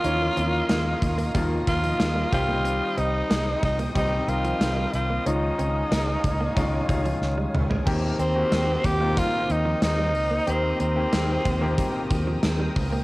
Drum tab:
CC |----------------|----------------|----------------|x---------------|
HH |x-x-x-xxx-xxx-x-|x-x-x-xxx-xxx-x-|x-x-x-x-x-xx----|--x-x-x-x-x-x-o-|
SD |----o-------o---|----o-------o---|----o-------o---|----o-------o---|
T2 |----------------|----------------|--------------o-|----------------|
FT |----------------|----------------|---------------o|----------------|
BD |------o-o-o---o-|------o-o-------|------o-o-o-----|o-----o-o-------|

CC |----------------|
HH |x-x-x-x-x-x-x-o-|
SD |----o-------o---|
T2 |----------------|
FT |----------------|
BD |------o-o-o---o-|